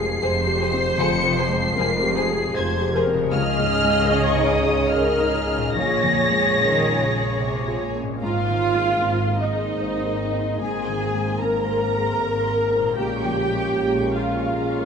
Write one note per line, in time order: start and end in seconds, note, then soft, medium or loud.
0.00 0.13 F1 medium
0.00 0.13 F2 medium
0.00 0.95 F2 medium
0.00 1.01 C3 medium
0.00 2.40 F3 medium
0.00 1.01 G#3 medium
0.00 2.44 G#3 medium
0.00 0.73 C4 medium
0.00 2.48 C4 medium
0.00 0.12 G4 medium
0.00 0.23 G#4 medium
0.00 0.37 G#4 medium
0.00 0.96 C7 loud
0.22 0.90 F1 medium
0.22 0.90 F2 medium
0.22 0.30 G#4 medium
0.22 0.63 C5 medium
0.22 0.30 C5 medium
0.22 1.77 C5 loud
0.47 0.88 G4 medium
0.61 0.69 G#4 medium
0.61 0.69 C5 medium
0.73 1.14 C4 medium
0.98 1.67 F1 medium
0.98 3.28 F2 medium
0.98 1.67 F2 loud
0.98 1.08 G#4 medium
0.98 1.08 C5 medium
0.98 1.37 C#7 loud
1.23 1.65 C3 soft
1.37 1.47 G#4 medium
1.37 1.47 C5 medium
1.37 2.55 C7 loud
1.49 1.91 G#3 medium
1.75 2.46 F1 medium
1.75 2.46 F2 medium
1.75 2.18 C4 medium
1.75 1.87 G#4 medium
1.75 2.16 A#4 medium
1.75 1.86 C5 medium
2.02 2.44 G4 medium
2.16 2.54 G#4 medium
2.16 2.24 G#4 medium
2.16 2.24 C5 medium
2.29 2.70 G#4 medium
2.55 3.23 F1 medium
2.55 3.23 F2 medium
2.55 2.64 G#4 medium
2.55 2.96 C5 medium
2.55 2.94 C5 medium
2.55 2.65 C5 medium
2.55 2.94 G#6 medium
2.81 3.22 G4 medium
2.94 3.04 G#4 medium
2.94 3.32 A#4 medium
2.94 3.03 C5 medium
3.06 3.32 C4 medium
3.14 5.70 C#3 medium
3.18 5.61 G#3 medium
3.23 7.13 C#5 medium
3.28 5.71 C#2 medium
3.28 5.77 D#4 medium
3.32 5.72 C#2 medium
3.32 5.72 C#3 medium
3.32 4.87 G#4 medium
3.32 4.11 G#4 medium
3.32 4.87 D#5 medium
3.32 4.26 F6 loud
3.58 4.00 G#2 medium
3.84 4.26 G#3 medium
4.10 4.53 C#4 medium
4.10 4.91 C#5 medium
4.30 4.50 C#6 medium
4.36 4.79 D#4 medium
4.49 4.90 D#6 medium
4.63 5.07 G#4 medium
4.90 5.74 G#4 medium
4.90 5.33 A#4 medium
4.90 5.35 C#5 medium
4.90 5.75 D#5 medium
4.90 5.76 F6 medium
5.18 5.64 D#4 medium
5.34 5.76 G#4 medium
5.46 5.75 C#4 medium
5.57 8.15 A#2 medium
5.62 8.06 G#3 medium
5.66 8.20 A#3 soft
5.71 8.22 F4 medium
5.75 8.17 A#1 medium
5.75 7.97 A#1 medium
5.75 6.49 A#2 medium
5.75 7.97 G#4 medium
5.75 7.97 C#5 medium
5.75 7.77 C#5 medium
5.75 7.77 A#6 loud
6.03 6.47 F2 medium
6.31 6.75 G#3 medium
6.58 6.96 D#3 medium
6.58 7.03 C#4 medium
6.86 7.30 F4 soft
6.99 7.40 C#3 medium
7.14 7.57 G#4 medium
7.40 7.81 C3 medium
7.40 7.84 C#5 soft
7.68 8.11 F4 medium
7.80 8.21 A#2 medium
7.95 8.21 C#4 medium
8.03 11.93 G#2 soft
8.07 11.97 G#3 soft
8.12 12.02 C4 soft
8.17 12.07 A#4 soft
8.17 8.39 A#5 medium
8.21 8.91 G#1 medium
8.21 8.91 G#2 medium
8.21 10.56 G#2 soft
8.21 12.93 A#3 medium
8.21 12.93 C4 medium
8.21 9.36 F4 loud
8.21 9.36 F5 medium
8.41 8.61 C6 soft
8.48 8.90 D#3 soft
8.60 8.80 A#5 soft
8.75 9.16 G#3 soft
8.80 9.00 C6 soft
9.00 9.70 G#1 medium
9.00 9.70 G#2 medium
9.00 9.43 C4 soft
9.00 9.19 A#5 soft
9.19 9.39 C6 soft
9.28 9.69 A#4 soft
9.39 10.60 D#4 medium
9.39 10.60 D#5 medium
9.39 9.59 A#5 soft
9.53 9.95 G#4 soft
9.59 9.79 C6 soft
9.78 10.51 G#1 medium
9.78 10.50 G#2 medium
9.78 10.22 C5 soft
9.78 9.97 A#5 soft
9.99 10.19 C6 soft
10.06 10.49 A#4 soft
10.19 10.40 A#5 soft
10.34 10.77 C4 soft
10.40 10.60 C6 soft
10.59 11.31 G#1 medium
10.59 12.93 G#2 medium
10.59 11.31 G#2 medium
10.59 11.39 G#4 medium
10.59 11.38 G#5 medium
10.59 10.79 A#5 medium
10.80 11.00 C6 soft
10.87 11.30 D#3 soft
10.99 11.20 A#5 soft
11.15 11.57 G#3 soft
11.20 11.40 C6 medium
11.40 12.10 G#1 medium
11.40 12.10 G#2 medium
11.40 11.83 C4 soft
11.40 12.94 A#4 loud
11.40 11.59 A#5 soft
11.40 12.97 A#5 medium
11.60 11.80 C6 soft
11.68 12.09 A#4 soft
11.79 11.99 A#5 soft
11.95 12.36 G#4 soft
11.99 12.19 C6 soft
12.19 12.88 G#1 medium
12.19 12.88 G#2 medium
12.19 12.61 C5 soft
12.19 12.38 A#5 soft
12.39 12.58 C6 soft
12.46 12.87 A#4 soft
12.58 12.77 A#5 soft
12.71 12.97 C4 soft
12.78 14.85 A#2 soft
12.78 12.97 C6 soft
12.83 14.85 G#3 soft
12.88 14.85 C#4 soft
12.92 14.85 A#4 soft
12.96 13.66 A#1 medium
12.96 13.66 A#2 medium
12.96 14.85 A#2 medium
12.96 14.85 G#3 medium
12.96 14.85 C#4 medium
12.96 14.12 G4 medium
12.96 14.12 G5 medium
12.96 13.15 A#5 medium
13.16 13.36 C#6 soft
13.24 13.65 F3 soft
13.37 13.56 A#5 soft
13.49 13.91 G#3 soft
13.56 13.76 C#6 medium
13.75 14.44 A#1 medium
13.75 14.44 A#2 medium
13.75 14.17 C#4 soft
13.75 13.94 A#5 soft
13.95 14.14 C#6 soft
14.01 14.43 A#4 soft
14.15 14.85 F4 medium
14.15 14.85 F5 medium
14.15 14.34 A#5 soft
14.28 14.69 G#4 soft
14.35 14.54 C#6 soft
14.53 14.85 A#1 medium
14.53 14.85 A#2 medium
14.53 14.85 C#5 soft
14.53 14.71 A#5 soft
14.74 14.85 C#6 soft
14.79 14.85 A#4 soft